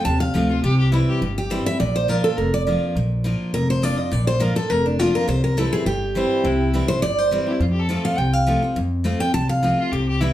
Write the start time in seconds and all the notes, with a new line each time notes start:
0.05 D#2 C3 A5
0.20 F5
0.34 D2 F3 A3 C4 F4
0.49 C4 F4
0.63 C2 C3 G4
0.79 G4
0.92 E3 G3 C4 E4
1.08 G4
1.21 G1 G2
1.38 G4
1.50 E3 G3 C4 E4 C5
1.66 C4 E4 E5
1.80 A#1 A#2 D5
1.96 C5
2.08 F3 A#3 D4 F4 A#4
2.24 A4
2.38 F1 F2 A#4
2.54 D5
2.67 F3 A#3 D4 F4
2.95 A#1 A#2
3.24 F3 A#3 D4 F4
3.53 F1 F2 A#4
3.70 C5
3.82 F3 A#3 D4 F4 D5
3.98 D4 F4 D#5
4.11 A#1 A#2 D5
4.27 C5
4.40 F3 A#3 D4 F4 A#4
4.55 D4 F4 A4
4.70 F1 F2 A#4
4.86 D4
4.99 F3 A#3 D4 F4
5.15 A#4
5.28 C2 C3 C5
5.44 A#4
5.57 E3 G3 C4 E4 A4
5.73 G#4
5.86 G1 G2 G4
6.15 E3 G3 C4 E4 C5
6.44 C2 C3 E4
6.74 E3 G3 C4 E4
6.88 C4 E4 C5
7.02 G1 G2 D5
7.18 C5
7.31 E3 G3 C4 E4
7.46 C4 E4 G4
7.51 E4
7.60 F2 F4
7.71 G4
7.80 A4
7.89 F3 A3 C4 F4
8.05 F5
8.17 C2 C3 G5
8.33 F5
8.47 F3 A3 C4 F4
8.62 C4 F4
8.76 F2
9.04 F3 A3 C4 F4
9.20 C4 F4 G5
9.34 C2 C3 A5
9.49 F5
9.63 F3 A3 C4 F4
9.79 F4
9.92 C2 C3 G4
10.08 G4
10.21 E3 G3 C4 E4